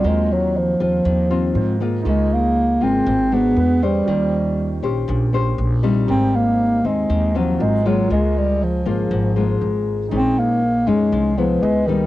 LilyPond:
<<
  \new Staff \with { instrumentName = "Grand piano" } { \time 4/4 \key aes \major \tempo 4 = 119 <f' bes' c''>2. <f' bes' c''>4 | <ees' f' aes' bes'>2. <gis' b'>4 | <des' f' g' c''>1 | <ees' g' bes' c''>2. <f' bes' c''>4 |
<f' aes' bes' ees''>1 | <ees' aes' c'' des''>2. <aes' ces'' ees''>4 | }
  \new Staff \with { instrumentName = "Nylon-string guitar" } { \time 4/4 \key aes \major << { <ges c' f'>4. <c' f'>4 <c' f'>4 <aes bes f'>8~ | <aes bes f'>4. <aes bes f'>4 <aes d' ges'>4 <des' g' c''>8~ | <des' g' c''>4. <des' g' c''>4 <des' g' c''>4 <g c' ees'>8~ | <g c' ees'>4. <c' ees'>4 <ges c' f'>4 <aes bes f'>8~ |
<aes bes f'>4. <aes bes f'>4 <aes bes f'>4. | <aes des' ees'>4 r8 <aes des' ees'>4 <aes b e'>4 <g bes ees'>8 | } \\ { ees2 ees2 | des2 aes,4 r4 | ees2 bes,2 | aes,2 ees4 r4 |
des2 aes,2 | bes,2 f4 r4 | } >> }
  \new Staff \with { instrumentName = "Bass clarinet" } { \clef bass \time 4/4 \key aes \major aes8 ges8 f8 f2 r8 | aes8 bes4 c'4 b4 g8~ | g4. r2 r8 | c'8 bes4 aes4 f8 aes8 ges8 |
aes8 g8 f8 f2 r8 | c'8 bes4 aes4 f8 aes8 ees8 | }
  \new Staff \with { instrumentName = "Upright bass" } { \clef bass \time 4/4 \key aes \major ees,4. ees,8 ees,4 aes,4 | des,4. aes,,8 aes,,4 e,4 | ees,4. bes,,8 bes,,4 bes,,4 | aes,,4. ees,8 ees,4 aes,,4 |
des,4. aes,,8 aes,,4 aes,,4 | bes,,4. f,8 c,4 des,4 | }
>>